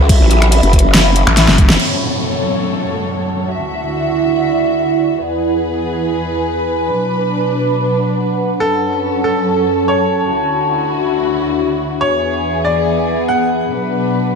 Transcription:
0.00 0.19 C#2 loud
0.00 1.75 F#3 medium
0.00 3.50 C#4 medium
0.00 1.75 F#4 medium
0.00 1.75 A4 medium
0.00 4.02 A4 medium
0.00 1.78 E5 medium
0.00 2.48 E5 medium
0.00 2.48 B5 medium
0.09 kick loud
0.09 closed hi-hat medium
0.09 crash medium
0.21 0.61 A1 loud
0.31 closed hi-hat medium
0.42 finger snap medium
0.42 closed hi-hat soft
0.52 closed hi-hat medium
0.52 crash soft
0.63 0.83 F#1 loud
0.63 closed hi-hat soft
0.73 kick medium
0.73 closed hi-hat medium
0.79 closed hi-hat medium
0.84 1.25 F#1 loud
0.94 snare loud
0.94 closed hi-hat medium
0.94 crash medium
1.16 closed hi-hat medium
1.27 1.46 A1 loud
1.27 finger snap medium
1.37 snare medium
1.37 closed hi-hat medium
1.37 crash soft
1.48 1.68 F#1 loud
1.48 snare medium
1.58 kick loud
1.58 closed hi-hat medium
1.70 1.78 E1 medium
1.70 snare medium
1.80 3.48 F#2 medium
1.80 3.48 F#3 medium
1.80 3.48 A4 medium
1.80 3.48 C#5 medium
1.80 crash medium
1.80 downlifter medium
2.45 5.88 F#5 medium
2.57 5.20 A5 medium
3.50 5.18 D2 medium
3.50 5.18 D3 medium
3.50 7.59 E4 medium
3.50 5.18 F#4 medium
3.50 5.18 E5 medium
3.64 5.88 D5 medium
5.20 6.88 E2 medium
5.20 6.88 E3 medium
5.20 6.88 G#4 medium
5.20 8.57 B4 medium
5.34 9.29 B4 loud
5.87 7.59 G#5 medium
5.97 9.29 B5 medium
6.90 8.59 B2 medium
6.90 8.59 F#3 medium
6.90 8.60 D4 medium
6.90 8.59 D4 medium
7.43 10.90 F#5 medium
8.60 10.29 F#2 medium
8.60 10.29 F#3 medium
8.60 10.29 C#4 medium
8.60 10.31 C#4 medium
8.60 9.16 A4 loud
8.60 10.29 A4 medium
8.66 10.99 A4 medium
9.24 9.80 A4 medium
9.38 12.01 A5 medium
9.88 11.93 C#5 medium
10.31 11.99 D2 medium
10.31 11.99 D3 medium
10.31 12.69 D4 medium
10.31 11.99 E4 medium
10.31 11.99 F#4 medium
10.40 12.69 F#4 medium
10.74 14.06 E5 medium
12.01 13.69 E2 medium
12.01 13.69 E3 medium
12.01 14.35 B3 medium
12.01 13.69 B3 medium
12.01 13.69 G#4 medium
12.01 12.57 C#5 loud
12.23 14.06 G#4 medium
12.65 13.20 D5 medium
12.78 14.35 B5 medium
13.29 14.35 F#5 medium
13.71 14.35 B2 medium
13.71 14.35 F#3 medium
13.71 14.35 D4 medium
13.71 14.35 B4 medium
13.92 14.35 F#4 medium
14.09 14.35 D5 medium

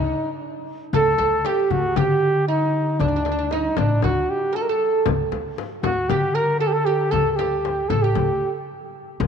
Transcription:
0.00 0.12 D2 medium
0.00 0.26 D#4 medium
0.00 0.30 D#4 medium
0.16 darbuka ka soft
0.42 darbuka ka soft
0.93 1.15 D2 medium
0.93 1.17 A4 medium
0.93 1.48 A4 loud
0.93 frame drum medium
0.93 darbuka dum loud
1.18 1.41 D2 medium
1.18 1.45 A4 medium
1.18 darbuka tek medium
1.18 frame drum medium
1.45 1.96 G4 medium
1.45 1.73 G4 medium
1.45 darbuka tek medium
1.45 frame drum medium
1.70 1.93 D2 medium
1.70 1.98 F#4 medium
1.70 darbuka dum medium
1.70 frame drum medium
1.96 3.01 D3 medium
1.96 2.47 G4 medium
1.96 2.48 G4 medium
1.96 frame drum medium
1.96 darbuka dum medium
2.23 darbuka ka soft
2.48 3.01 D#4 medium
2.48 2.96 D#4 medium
2.48 darbuka ka soft
2.99 3.67 D2 medium
2.99 3.53 D4 medium
2.99 3.07 D4 medium
2.99 darbuka dum medium
2.99 frame drum medium
3.08 3.15 D4 medium
3.16 3.23 D4 medium
3.25 3.30 D4 medium
3.25 darbuka tek medium
3.25 frame drum medium
3.32 3.37 D4 medium
3.39 3.46 D4 medium
3.51 3.79 D#4 medium
3.51 3.77 D#4 medium
3.51 darbuka tek medium
3.51 frame drum medium
3.76 3.99 A1 medium
3.76 4.03 D4 medium
3.76 frame drum medium
3.76 darbuka dum medium
4.02 4.25 D2 medium
4.02 4.32 F#4 medium
4.02 4.52 F#4 medium
4.02 frame drum medium
4.02 darbuka dum medium
4.30 4.57 G4 medium
4.53 4.64 A4 medium
4.53 4.68 A4 medium
4.53 4.55 A#4 medium
4.53 darbuka ka soft
4.62 4.70 A#4 medium
4.68 5.06 A4 medium
4.68 5.04 A4 medium
4.68 darbuka ka soft
4.81 darbuka ka soft
5.06 5.29 D2 medium
5.06 frame drum loud
5.06 darbuka dum medium
5.32 5.54 D2 medium
5.32 darbuka tek medium
5.32 frame drum medium
5.58 darbuka tek medium
5.58 frame drum medium
5.71 darbuka ka soft
5.83 6.06 D2 medium
5.83 6.08 F#4 medium
5.83 6.10 F#4 medium
5.83 frame drum medium
6.09 7.14 D3 medium
6.09 6.37 G4 medium
6.09 6.34 G4 medium
6.09 frame drum medium
6.09 darbuka dum medium
6.35 6.60 A#4 medium
6.35 6.59 A#4 medium
6.60 6.69 A4 medium
6.60 6.86 A4 medium
6.67 6.74 G4 medium
6.73 6.87 A4 medium
6.85 7.13 G4 medium
6.85 7.11 G4 medium
7.11 7.80 D2 medium
7.11 7.31 A4 medium
7.11 7.38 A4 medium
7.11 frame drum medium
7.11 darbuka dum medium
7.31 7.38 A4 medium
7.36 7.90 G4 medium
7.36 darbuka tek medium
7.36 frame drum medium
7.65 darbuka tek medium
7.65 frame drum medium
7.89 8.13 A1 medium
7.89 8.04 A4 medium
7.89 frame drum medium
7.89 darbuka dum medium
8.02 8.55 G4 medium
8.02 8.52 G4 medium
8.15 8.39 D2 medium
8.15 frame drum medium
8.15 darbuka dum medium
8.43 darbuka ka soft
8.69 darbuka ka soft
9.20 9.27 D2 loud
9.20 frame drum medium
9.20 darbuka dum medium

